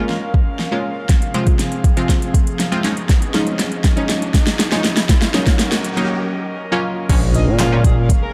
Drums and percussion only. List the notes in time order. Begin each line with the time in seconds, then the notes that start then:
0.09 snare
0.34 kick
0.59 snare
1.09 kick, snare, closed hi-hat
1.22 closed hi-hat
1.34 closed hi-hat
1.47 kick, closed hi-hat
1.59 snare, closed hi-hat
1.72 closed hi-hat
1.84 kick, closed hi-hat
1.97 closed hi-hat
2.09 kick, snare, closed hi-hat
2.22 closed hi-hat
2.34 kick, closed hi-hat
2.47 closed hi-hat
2.60 snare, closed hi-hat
2.72 closed hi-hat
2.84 snare, closed hi-hat
2.97 closed hi-hat
3.09 kick, snare, closed hi-hat
3.22 closed hi-hat
3.34 snare, closed hi-hat
3.47 closed hi-hat
3.59 snare, closed hi-hat
3.72 closed hi-hat
3.84 kick, snare, closed hi-hat
3.97 closed hi-hat
4.09 snare, closed hi-hat
4.22 closed hi-hat
4.34 kick, snare, closed hi-hat
4.47 snare, closed hi-hat
4.59 snare, closed hi-hat
4.72 snare, closed hi-hat
4.84 snare, closed hi-hat
4.97 snare, closed hi-hat
5.09 kick, snare, closed hi-hat
5.22 snare, closed hi-hat
5.34 snare, closed hi-hat
5.47 kick, snare, closed hi-hat
5.59 snare, closed hi-hat
5.72 snare, closed hi-hat
5.84 closed hi-hat
5.97 closed hi-hat
7.09 kick, closed hi-hat, crash
7.34 closed hi-hat
7.59 snare, clap, closed hi-hat
7.84 kick, closed hi-hat
8.09 kick, closed hi-hat